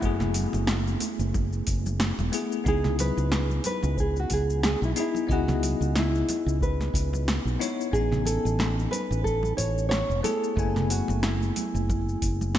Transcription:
Already playing: B3 E4 G#4, downlifter
0.00 F#1 A3 B3 E4 F#4, kick, shaker
0.05 G#4
0.20 snare, muted conga, low conga, shaker
0.34 open hi-hat, high conga, shaker
0.53 F#1, muted conga, shaker
0.67 snare, shaker
0.87 shaker
1.00 open hi-hat, muted conga, high conga, shaker
1.19 F#1, shaker
1.34 kick, muted conga, shaker
1.53 shaker
1.67 F#1, kick, open hi-hat, shaker
1.86 muted conga, high conga, shaker
2.00 snare, shaker
2.19 E1, muted conga, shaker
2.32 A3 B3 E4 G#4, open hi-hat, shaker
2.52 shaker
2.64 C#2 B3 D#4 E4, kick, muted conga, shaker
2.68 G#4
2.84 snare, low conga, shaker
2.99 B4, open hi-hat, muted conga, high conga, shaker
3.17 C#2, shaker
3.32 snare, shaker
3.50 muted conga, shaker
3.64 B4, open hi-hat, high conga, shaker
3.83 C#2, muted conga, shaker
3.97 G#4, kick, shaker
4.16 F#4, shaker
4.30 C#2 G#4, kick, open hi-hat, muted conga, shaker
4.50 shaker
4.63 G#4, snare, muted conga, shaker
4.82 B1 E4, shaker
4.96 B3 D#4 E4 G#4, open hi-hat, shaker
5.15 muted conga, shaker
5.27 C#2 B3 E4 D#5, kick, shaker
5.31 F#4 G#4
5.48 snare, muted conga, low conga, shaker
5.63 open hi-hat, high conga, shaker
5.81 C#2, shaker
5.96 E4, snare, muted conga, shaker
6.15 shaker
6.29 open hi-hat, muted conga, high conga, shaker
6.46 C#2, shaker
6.61 B4, kick, shaker
6.80 snare, muted conga, shaker
6.94 C#2, kick, open hi-hat, shaker
7.13 muted conga, high conga, shaker
7.28 snare, shaker
7.45 B1, shaker
7.59 B3 D#4 E4 C#5, open hi-hat, muted conga, shaker
7.81 shaker
7.91 A1 B3 C#4 D#4 G#4, kick, shaker
7.96 G#5
8.12 snare, low conga, shaker
8.25 A4, open hi-hat, muted conga, high conga, shaker
8.45 A1, shaker
8.59 snare, muted conga, shaker
8.79 shaker
8.91 B4, open hi-hat, high conga, shaker
9.11 A1, muted conga, shaker
9.24 A4, kick, shaker
9.43 muted conga, shaker
9.57 A1 C#5, kick, open hi-hat, shaker
9.78 shaker
9.89 C#5, snare, muted conga, shaker
10.10 E1, shaker
10.23 A3 B3 E4 G#4 A4, open hi-hat, muted conga, shaker
10.44 shaker
10.56 F#1 A3 B3 E4 G#5, kick, shaker
10.76 snare, muted conga, low conga, shaker
10.90 F#4, open hi-hat, high conga, shaker
11.08 F#1, muted conga, shaker
11.23 E4, snare, shaker
11.42 shaker
11.56 open hi-hat, muted conga, high conga, shaker
11.74 F#1, shaker
11.89 kick, muted conga, shaker
12.09 shaker
12.22 F#1, kick, open hi-hat, shaker
12.41 muted conga, high conga, shaker
12.55 snare

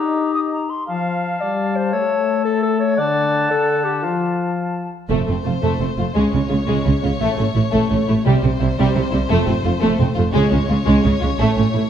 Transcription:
Already playing: D#4 G4 D#5 A#5
0.34 D#6
0.52 A#5
0.70 C6
0.87 F3 F5 A5
1.41 G3 D5
1.76 C5
1.93 A3 C#5 E5
2.45 A4
2.63 A4
2.80 C#5
2.97 D3 D5 F#5 A5
3.50 D3 A4
3.84 G4
4.03 F3 F4 F5
5.10 F1 F2 A3 C5
5.28 F1 F2 A3 C4
5.44 F1 F2 A3 F4
5.62 F1 F2 A3
5.80 F1 F2 A3 C4
5.97 F1 F2 A3 F4
6.14 C#2 C#3 G#3 C#5
6.32 C#2 C#3 G#3 C#4
6.49 C#2 C#3 G#3 F4
6.66 C#2 C#3 G#3
6.84 C#2 C#3 G#3 C#4
7.03 C#2 C#3 G#3 F4
7.20 A1 A2 A3
7.37 A1 A2 A3 C#4
7.55 A1 A2 A3 E4
7.72 A1 A2 A3
7.89 A1 A2 A3 C#4
8.07 A1 A2 A3 E4
8.24 C2 C3 G3 C5
8.43 C2 C3 G3 C4
8.60 C2 C3 G3 E4
8.78 C2 C3 G3
8.95 C2 C3 G3 C4
9.11 C2 C3 G3 E4
9.29 F1 F2 A3
9.46 F1 F2 A3 C4
9.64 F1 F2 A3 F4
9.81 F1 F2 A3
10.00 F1 F2 A3 C4
10.15 F1 F2 A3 F4
10.33 C#2 C#3 G#3 C#5
10.51 C#2 C#3 G#3 C#4
10.68 C#2 C#3 G#3 F4
10.84 C#2 C#3 G#3
11.03 C#2 C#3 G#3 C#4
11.20 C#2 C#3 G#3 F4
11.38 A1 A2 A3
11.57 A1 A2 A3 C#4
11.74 A1 A2 A3 E4

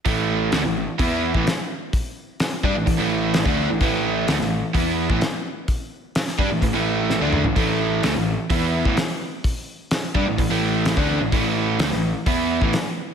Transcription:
0.06 A1 A2 E3 A3, kick, open hi-hat
0.52 D2 D3 A3, snare, open hi-hat
0.65 A1 A2 E3
0.99 E2 E3 B3 E4, kick, open hi-hat
1.35 A1 A2 E3, kick
1.47 snare, open hi-hat
1.93 kick, open hi-hat
2.40 snare, open hi-hat
2.63 G2 G3 D4, kick
2.75 A1 A2 E3
2.87 A1 A2 E3, kick, open hi-hat
2.99 A1 A2 E3 A3
3.34 snare, open hi-hat
3.45 D2 D3 A3 D4, kick
3.69 A1 A2 E3
3.80 A1 A2 E3 A3, kick, open hi-hat
4.28 D2 D3 A3, snare, open hi-hat
4.40 A1 A2 E3, snare
4.74 E2 E3 B3 E4, kick, open hi-hat
5.10 A1 A2 E3, kick
5.21 snare, open hi-hat
5.68 kick, open hi-hat
6.15 snare, open hi-hat
6.27 snare
6.38 G2 G3 D4, kick
6.50 A1 A2 E3
6.61 A1 A2 E3, kick, open hi-hat
6.73 A1 A2 E3 A3
7.10 snare
7.20 D2 D3 A3 D4
7.33 mid tom
7.44 A1 A2 E3, floor tom
7.56 A1 A2 E3 A3, kick, open hi-hat
8.03 D2 D3 A3, snare, open hi-hat
8.15 A1 A2 E3
8.50 E2 E3 B3 E4, kick, open hi-hat
8.85 A1 A2 E3, kick
8.97 snare, open hi-hat
9.44 kick, open hi-hat
9.91 snare, open hi-hat
10.15 G2 G3 D4, kick
10.26 A1 A2 E3
10.38 A1 A2 E3, kick, open hi-hat
10.50 A1 A2 E3 A3
10.86 snare, open hi-hat
10.96 D2 D3 A3 D4, kick
11.20 A1 A2 E3
11.32 A1 A2 E3 A3, kick, open hi-hat
11.79 D2 D3 A3, snare, open hi-hat
11.92 A1 A2 E3, snare
12.26 E2 E3 B3 E4, kick, open hi-hat
12.61 A1 A2 E3, kick
12.73 snare, open hi-hat

